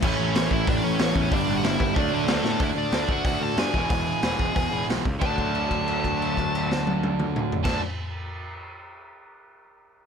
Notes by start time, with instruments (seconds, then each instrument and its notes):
0.01 picked electric bass A1, overdriven electric guitar A2 E3 A3 C#4 E4, lead electric guitar C#4 C#5, kick, crash
0.20 picked electric bass A1
0.35 picked electric bass A1, lead electric guitar C#4 C#5, snare, open hi-hat
0.50 picked electric bass A1, overdriven electric guitar A2 E3 A3 C#4 E4, lead electric guitar E4 E5, kick
0.67 picked electric bass A1, lead electric guitar D4 D5, kick, open hi-hat
0.83 picked electric bass A1, lead electric guitar C#4 C#5
0.98 picked electric bass A1, overdriven electric guitar A2 E3 A3 C#4 E4, snare, open hi-hat
1.14 picked electric bass E2, distorted electric guitar A2 E3 A3, kick
1.30 picked electric bass G1, overdriven electric guitar G2 D3 G3 B3 D4, lead electric guitar D4 D5, kick, open hi-hat
1.48 picked electric bass G1
1.56 lead electric guitar F#4 F#5
1.63 picked electric bass G1, lead electric guitar E4 E5, snare, open hi-hat
1.78 picked electric bass G1, overdriven electric guitar G2 D3 G3 B3 D4, kick
1.94 picked electric bass D2, overdriven electric guitar D3 F#3 A3 D4, lead electric guitar D4, kick, open hi-hat
1.99 lead electric guitar D5
2.12 picked electric bass D2, lead electric guitar A3 A4
2.27 picked electric bass D2, snare, open hi-hat
2.43 picked electric bass A2, overdriven electric guitar D3 F#3 A3 D4, snare
2.60 picked electric bass D2, overdriven electric guitar D3 A3 D4 F#4, lead electric guitar E5, kick, open hi-hat
2.64 lead electric guitar E4
2.76 picked electric bass D2, lead electric guitar D4 D5
2.92 picked electric bass D2, snare, open hi-hat
3.08 picked electric bass D2, overdriven electric guitar D3 A3 D4 F#4, lead electric guitar F#5, kick
3.12 lead electric guitar F#4
3.25 picked electric bass D2, lead electric guitar F#4 F#5, kick, open hi-hat
3.40 picked electric bass D2, lead electric guitar A4 A5
3.56 picked electric bass G2, distorted electric guitar D3 A3 D4, lead electric guitar G#4 G#5, snare, open hi-hat
3.72 picked electric bass E1, distorted electric guitar E2 B2, overdriven electric guitar E3 G#3 B3, kick
3.76 overdriven electric guitar E4
3.90 picked electric bass E1, lead electric guitar G#4 G#5, kick, open hi-hat
4.22 picked electric bass E1, distorted electric guitar E2 B2, overdriven electric guitar E3 G#3 B3 E4, snare, open hi-hat
4.39 picked electric bass E1, kick
4.56 picked electric bass E1, kick, open hi-hat
4.72 picked electric bass E1, distorted electric guitar E2 B2 E3
4.89 picked electric bass B1, snare, open hi-hat
5.05 picked electric bass C#2, kick
5.20 picked electric bass D2, overdriven electric guitar D3 F#3 A3, lead electric guitar A5, kick, crash
5.25 overdriven electric guitar D4
5.38 kick, crash
5.55 crash
5.71 kick, crash
5.88 crash
6.04 kick, crash
6.22 crash
6.37 kick, crash
6.55 crash
6.71 snare
6.87 high tom
7.03 high tom
7.20 mid tom
7.36 mid tom
7.52 floor tom
7.64 picked electric bass D2, overdriven electric guitar D3 F#3 A3, lead electric guitar A5, kick, snare, crash
7.68 overdriven electric guitar D4